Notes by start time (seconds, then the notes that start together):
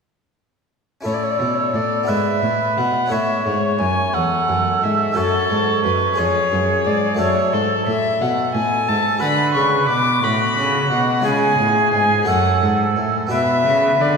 1.01 C#4 E4 A4
1.05 A2 C#5
1.14 D5
1.23 C#5
1.30 D5
1.38 B2 C#5
1.46 D5
1.55 C#5
1.74 A2 D5
2.03 B3 E4 B4
2.08 G#2 B4 E5
2.43 A2
2.77 B2 F#5
3.06 C#4 E4 A4
3.11 A2 C#5 E5
3.45 G#2 C#5
3.79 F#2 G#5
4.13 E2 A4 F#5
4.48 F#2
4.82 G#2 E5
5.12 C#4 F#4 A4
5.17 F#2 A4 C#5
5.50 G#2
5.84 F#2 B4
6.14 C#4 G#4
6.18 F2 G#4 C#5
6.52 F#2
6.85 G#2 D5
7.15 A3 F#4 A4
7.19 F#2 A4 C#5
7.52 G#2 A4
7.86 A2 E5
8.21 B2 A4 F#5
8.55 A2 G#5
8.88 G#2 A5
9.18 D3 F#4 B4 B5
9.54 C#3 C#6
9.88 B2 D6
10.23 A2 F#4 B5
10.57 C#3
10.90 B2 F#5
11.20 G#3 F4 C#5
11.24 C#3 G#4 G#5
11.59 A2
11.92 G#2 G#5
12.23 A3 F#4 A4 C#5
12.28 F#2 F#5
12.62 G#2
12.96 A2
13.27 B3 F#4 D5
13.31 B2 B4 E5
13.66 C#3
14.00 D3 D5